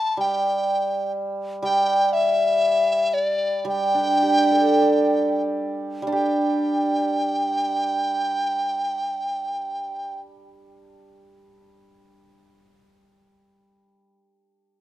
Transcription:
Already playing: A5
0.17 G3 G5
1.62 G3 G5
2.13 E5
3.14 D5
3.65 G3
3.69 G5
3.95 D4
4.22 G4
4.51 A4
4.82 D5
6.02 G3
6.07 D4
6.12 G4 G5

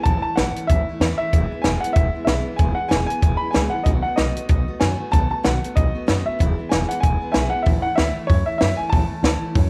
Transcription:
0.03 A1 A2 E3 A3 C#4 E4 A5, kick, closed hi-hat
0.22 A3 C#4 E4 A5, muted upright bass stroke
0.36 A1 A2 E3 A3 C#4 E4 F#5, snare, closed hi-hat
0.56 A3 C#4 E4, muted upright bass stroke, closed hi-hat
0.67 A1 E3 A3 C#4 E5, kick, closed hi-hat
0.71 E4
0.87 C#4 E4, muted upright bass stroke
0.92 A3
1.00 E2 A2 E3 A3 E4, snare, closed hi-hat
1.04 C#4
1.18 C#4 E4 E5, muted upright bass stroke
1.23 A3
1.33 E1 E2 B2 E3 G#3 B3 E4, kick, closed hi-hat
1.51 E3 G#3 B3 E4, muted upright bass stroke
1.62 E1 E2 B2 E3 G#3 B3 E4 G#5, snare, closed hi-hat
1.80 G#3 B3 E4 F#5, muted upright bass stroke, closed hi-hat
1.85 E3
1.93 E1 E3 G#3 E5, kick, closed hi-hat
1.97 B3 E4
2.14 E3 G#3 B3 E4, muted upright bass stroke
2.25 B1 E2 B2 E3 G#3 B3 E5, snare, closed hi-hat
2.29 E4
2.45 E3 G#3 B3 E4, muted upright bass stroke
2.56 E1 E2 B2 E3 G#3 B3 E4 G#5, kick, closed hi-hat
2.75 E3 G#3 B3 E4 F#5
2.88 E1 E2 B2 E3 G#3 B3 E4 G#5, snare, closed hi-hat
3.06 E3 G#3 B3 E4 G#5, closed hi-hat
3.21 E1 E3 G#3 B3 E4, kick, closed hi-hat
3.37 B3 E4 B5
3.41 E3 G#3
3.51 E2 B2 E3 G#3 B3 E4 G#5, snare, closed hi-hat
3.55 C#2
3.70 E3 G#3 B3 E4 F#5
3.83 B1 B2 D#3 A3 B3 F#4 D#5, kick, closed hi-hat
4.02 A3 B3 F#4 F#5, muted upright bass stroke
4.16 B1 B2 D#3 A3 B3 F#4 D#5, snare, closed hi-hat
4.35 A3 B3 F#4, muted upright bass stroke, closed hi-hat
4.48 B1 D#3 A3 B3 F#4, kick, closed hi-hat
4.68 A3 B3 F#4, muted upright bass stroke
4.80 F#2 B2 D#3 A3 B3 F#4 G#5, snare, closed hi-hat
4.99 A3 B3 F#4, muted upright bass stroke
5.11 B1 B2 D#3 A3 B3 F#4 A5, kick, closed hi-hat
5.30 A3 B3 F#4 A5
5.43 B1 B2 D#3 A3 B3 F#4 F#5, snare, closed hi-hat
5.62 A3 B3 F#4, muted upright bass stroke, closed hi-hat
5.75 B1 D#3 A3 B3 F#4 D#5, kick, closed hi-hat
5.95 A3 B3 F#4, muted upright bass stroke
6.07 F#2 B2 D#3 A3 B3 F#4, snare, closed hi-hat
6.26 A3 B3 F#4 E5, muted upright bass stroke
6.39 E1 E2 B2 E3 G#3 B3 E4, kick, closed hi-hat
6.58 E3 G#3 B3 E4
6.69 E1 E2 B2 E3 G#3 B3 E4 G#5, snare, closed hi-hat
6.89 E3 G#3 B3 E4 F#5, muted upright bass stroke, closed hi-hat
7.00 E1 E3 G#3 G#5, kick, closed hi-hat
7.04 B3 E4
7.21 E3 G#3 B3 E4, muted upright bass stroke
7.32 B1 E2 B2 E3 G#3 B3 E4 E5 G#5, snare, closed hi-hat
7.50 G#3 B3 E4 F#5
7.55 E3
7.63 A2 E3 A3 C#4 E4 E5, kick, open hi-hat
7.67 A1
7.82 E4 F#5, muted upright bass stroke
7.86 A3 C#4
7.96 D2 A2 E3 A3 C#4 E4 E5, snare, open hi-hat
8.16 A3 C#4 E4, muted upright bass stroke
8.27 F#2 E3 A3 C#4 E4 C#5, kick, open hi-hat
8.46 A3 C#4 E4 E5, muted upright bass stroke
8.58 F#2 A2 E3 A3 C#4 E4 E5, snare, open hi-hat
8.77 C#4 E4 G#5, muted upright bass stroke
8.82 A3
8.90 A1 A2 E3 A3 A5, kick, open hi-hat
8.94 C#4 E4
9.10 A3 C#4 E4, muted upright bass stroke
9.23 D2 A2 E3 A3 C#4 E4, snare, open hi-hat
9.41 A3 C#4 E4, muted upright bass stroke
9.55 F#2 E3 A3 C#4 E4, kick, open hi-hat

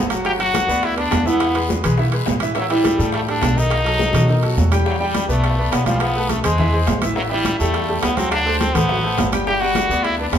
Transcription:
Already playing: G1
0.10 F#3 F#4 F#5, high bongo, high timbale, short guiro
0.25 F#3 F#4 G4 F#5, high bongo, high conga, high timbale, long guiro
0.39 F#3 F#4 F#5, high conga, high timbale
0.54 high bongo, high conga, high timbale, low timbale, short guiro
0.68 D2 B3 B4 D5, high bongo, high conga, short guiro
0.83 E4, high bongo, high conga, high timbale, long guiro
0.97 B3 D4 B4 D5, high bongo, high conga, high timbale
1.11 E2, high bongo, low bongo, high conga, high timbale, low timbale, short guiro
1.26 E3 B3 E4 E5, high bongo, high conga, short guiro
1.40 high bongo, high conga, high timbale, long guiro
1.55 G#3 G#4 B4, high bongo, high conga, high timbale
1.69 high bongo, high conga, low timbale, short guiro
1.84 B1 G#3 G#4 B4, high conga, low conga, high timbale, short guiro
1.98 E3 E4 E5, high bongo, high conga, long guiro
2.12 G#3 G#4 B4, high bongo, high conga, high timbale
2.26 A1, high bongo, low bongo, high conga, low timbale, short guiro
2.40 E3 E4 E5, high bongo, high timbale, short guiro
2.55 E3 F#3 E4 E5, high bongo, high conga, high timbale, long guiro
2.70 E3 G3 E4 E5, high conga, high timbale
2.84 high bongo, high conga, high timbale, low timbale, short guiro
2.99 A2 G3 G4 A4, high bongo, high conga, short guiro
3.12 A3, high bongo, high conga, high timbale, long guiro
3.27 G3 D4 G4 A4, high bongo, high conga, high timbale
3.42 B1, high bongo, low bongo, high conga, high timbale, low timbale, short guiro
3.56 D#3 D#4 D#5, high bongo, short guiro
3.70 high bongo, high conga, high timbale, long guiro
3.85 F#3 F#4 A4, high bongo, high conga, high timbale
3.99 high bongo, high conga, low timbale, short guiro
4.13 B2 F#3 F#4 A4, high bongo, high conga, low conga, high timbale, short guiro
4.28 D#3 D#4 D#5, low bongo, high conga, long guiro
4.43 F#3 F#4 A4, high conga, high timbale
4.57 E2, high conga, low timbale, short guiro
4.71 G3 G4 G5, low bongo, high conga, high timbale, short guiro
4.85 F#3 G3 G4 G5, high bongo, high conga, long guiro
5.00 G3 G4 G5, high conga
5.14 high bongo, high conga, high timbale, low timbale, short guiro
5.29 B1 A3 B3 B4 D5, high conga, short guiro
5.43 high bongo, high conga, high timbale, long guiro
5.58 B3 B4 D5, high conga
5.72 B1 B3, high bongo, low bongo, high conga, high timbale, low timbale, short guiro
5.86 F3 G3 F4 F5, high conga, high timbale, short guiro
6.00 B3, high bongo, high conga, high timbale, long guiro
6.15 A3 A4 B4, high bongo, high conga
6.29 A3, high bongo, high conga, high timbale, low timbale, short guiro
6.43 E2 G#3 G#4 C5, high conga, low conga, high timbale, short guiro
6.58 E3 E4 E5, high bongo, high conga, low conga, long guiro
6.73 G#3 G#4 C5, high bongo, high conga
6.87 A1, high bongo, low bongo, high conga, high timbale, low timbale, short guiro
7.02 E3 E4 E5, high bongo, high conga, high timbale, short guiro
7.15 E3 F#3 E4 E5, high bongo, high conga, long guiro
7.30 E3 G3 E4 E5, high conga
7.45 high bongo, high conga, high timbale, low timbale, short guiro
7.59 E2 G3 A3 G4 A4, high conga, short guiro
7.74 high bongo, high conga, high timbale, long guiro
7.88 G3 G4 A4, high conga
8.01 D2 B3, high bongo, low bongo, high conga, high timbale, low timbale, short guiro
8.17 F#3 C4 F#4 F#5, high conga, high timbale, short guiro
8.31 D4, high bongo, high conga, high timbale, long guiro
8.46 A3 A4 C5, high bongo, high conga
8.60 C4, high bongo, high conga, high timbale, low timbale, short guiro
8.74 A1 A3 B3 A4 C5, high conga, low conga, high timbale, short guiro
8.88 F#3 F#4 F#5, high bongo, high conga, long guiro
9.03 A3 A4 C5, high bongo, high conga
9.18 G1, high bongo, low bongo, high conga, high timbale, low timbale, short guiro
9.32 G3 G4 G5, high bongo, high conga, high timbale, short guiro
9.47 G3 G4 G5, high bongo, high conga, long guiro
9.61 G3 F#4 G4 G5, high conga
9.75 high bongo, high conga, high timbale, low timbale, short guiro
9.89 D2 B3 B4 D5, high conga, short guiro
10.04 E4, high bongo, high conga, high timbale, long guiro
10.18 B3 D4 B4 D5, high conga
10.30 E2 C4 D4, high bongo, low bongo, high conga, high timbale, low timbale
10.35 short guiro

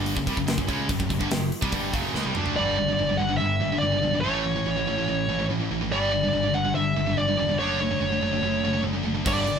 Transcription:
Already playing: G1 G2 D3 G3
0.06 open hi-hat
0.16 F#1 F#2 C#3, kick
0.26 C2 C3 G3, kick, open hi-hat
0.37 F#1 F#2 C#3, kick
0.47 F#1 F#2 C#3, snare, open hi-hat
0.58 F#1 F#2 C#3, kick
0.68 C#2 C#3 G#3 C#4, kick, open hi-hat
0.89 F#1 F#2 C#3, kick, open hi-hat
1.00 F#1 F#2 C#3, kick
1.10 F#1 F#2 C#3, kick, open hi-hat
1.19 G1 G2 D3, kick
1.31 F#1 F#2 C#3, snare, open hi-hat
1.52 open hi-hat
1.62 C2 C3 G3, kick
1.72 G1 G2 D3 G3, kick, open hi-hat
1.93 F#1 F#2 C#3 F#3, kick, open hi-hat
2.14 C#2 C#3 G#3, snare
2.25 C2 C3 G3, high tom
2.35 D2 D3 A3 D4, mid tom
2.46 floor tom
2.56 G1 G2 D3 G3 D5
2.78 G2 D3
2.89 G2 D3
2.99 G1 G2 D3
3.09 G2 D3
3.17 G1 G2 D3 F#5
3.30 G2 D3
3.37 G1 G2 D3 E5
3.62 G1 G2 D3
3.73 G2 D3
3.78 D5
3.83 G1 G2 D3
3.93 G2 D3
4.03 B1 G2 D3
4.14 G2 D3
4.21 A1 A2 E3 A3 C#5
4.45 A2 E3
4.55 A2 E3
4.66 A1 A2 E3
4.77 A2 E3
4.87 A1 A2 E3
4.97 A2 E3
5.08 A1 A2 E3
5.28 A1 A2 E3
5.39 A2 E3
5.49 A1 A2 E3
5.60 A2 E3
5.71 A1 A2 E3
5.81 A2 E3
5.92 G1 G2 D3 G3 D5
6.13 G2 D3
6.24 G2 D3
6.33 G1 G2 D3
6.44 G2 D3
6.54 G1 G2 D3 F#5
6.65 G2 D3
6.75 G1 G2 D3 E5
6.96 G1 G2 D3
7.06 G2 D3
7.17 G1 G2 D3 D5
7.28 G2 D3
7.37 E1 G2 D3
7.48 G2 D3
7.57 F#1 D3 A3 D4 C#5
7.80 D3 A3
7.90 D3 A3
7.99 F#1 D3 A3
8.10 D3 A3
8.21 F#1 D3 A3
8.31 D3 A3
8.41 F#1 D3 A3
8.62 F#1 D3 A3
8.73 D3 A3
8.83 F#1 D3 A3
8.95 D3 A3
9.04 F#1 D3 A3
9.15 D3 A3
9.25 G1 G2 D3 G3 D5, kick, crash
9.46 G2 D3, crash

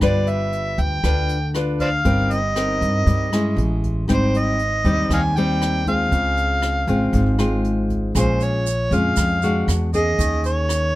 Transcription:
0.01 G1 G3 D4 F4 B4 D5, kick, cross-stick, closed hi-hat
0.27 E5, closed hi-hat
0.53 closed hi-hat
0.78 D2 G5, kick, closed hi-hat
1.03 D2 D3 D4 F4 B4, kick, cross-stick, closed hi-hat
1.29 closed hi-hat
1.54 D4 F4 B4, cross-stick, closed hi-hat
1.80 C5 D5 F5, kick, closed hi-hat
2.05 G1 G3 C4 D#4 A#4, kick, closed hi-hat
2.31 D#5, closed hi-hat
2.56 C4 D#4 A#4, cross-stick, closed hi-hat
2.81 G2, kick, closed hi-hat
3.06 G2 G3, kick, closed hi-hat
3.32 G#3 C#4 E4, cross-stick, closed hi-hat
3.56 A1, closed hi-hat
3.83 kick, closed hi-hat
4.08 G#1 G#2 G3 C4 D#4, kick, cross-stick, closed hi-hat
4.14 C5
4.34 D#5, closed hi-hat
4.59 closed hi-hat
4.85 D#2 G3 C4 D#4, kick, closed hi-hat
5.10 D#2 D#3 D#5 F5 G#5, kick, cross-stick, closed hi-hat
5.36 G3 C4 D#4 G5, closed hi-hat
5.61 cross-stick, closed hi-hat
5.86 G#3 C4 F4 F5, kick, closed hi-hat
6.11 C#2 C#3, kick, closed hi-hat
6.37 closed hi-hat
6.62 cross-stick, closed hi-hat
6.87 G#1 G#3 C4 F4, kick, closed hi-hat
7.13 G#1 G#2, kick, closed hi-hat
7.39 G#3 C4 F4, cross-stick, closed hi-hat
7.64 closed hi-hat
7.89 kick, closed hi-hat
8.15 A#1 A#2 G#3 C#4 F4 C5, kick, cross-stick, closed hi-hat, shaker
8.40 C#5, closed hi-hat, shaker
8.66 closed hi-hat, shaker
8.91 F2 G#3 C#4 F4, kick, closed hi-hat, shaker
8.95 F5
9.16 F2, kick, cross-stick, closed hi-hat, shaker
9.42 G#3 D4 F#4, closed hi-hat, shaker
9.68 E2, cross-stick, closed hi-hat, shaker
9.93 A#3 C#4 G#4 D#5, kick, closed hi-hat, shaker
10.19 D#2 D#3, kick, closed hi-hat, shaker
10.44 C#5, closed hi-hat, shaker
10.69 cross-stick, closed hi-hat, shaker

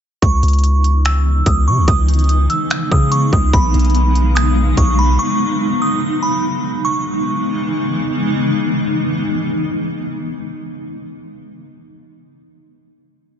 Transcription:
0.22 C#2 C#3 E3 G#3 B3 D#4 C#6, kick, closed hi-hat
0.43 C#2, closed hi-hat
0.48 closed hi-hat
0.53 closed hi-hat
0.59 closed hi-hat
0.64 closed hi-hat
0.84 closed hi-hat
1.05 E6, finger snap, closed hi-hat
1.46 C#2 D#6, kick, closed hi-hat
1.67 C#3 C#6
1.77 C#2
1.88 C#2 D#6, kick, closed hi-hat
2.08 closed hi-hat
2.14 closed hi-hat
2.19 closed hi-hat
2.24 closed hi-hat
2.29 closed hi-hat
2.50 E6, closed hi-hat
2.70 finger snap, closed hi-hat
2.92 C#3 D#6, kick
3.12 C#6, closed hi-hat
3.33 C#2 D#6, kick
3.53 B1 F#3 D#4 B5, kick, closed hi-hat
3.74 B1, closed hi-hat
3.79 closed hi-hat
3.85 closed hi-hat
3.90 closed hi-hat
3.95 closed hi-hat
4.15 closed hi-hat
4.35 D#6, finger snap, closed hi-hat
4.77 B1 C#6, kick, closed hi-hat
4.99 B5
5.19 C#6
5.82 D#6
6.23 B5
6.84 C#3 E3 G#3 B3 D#4 C#6

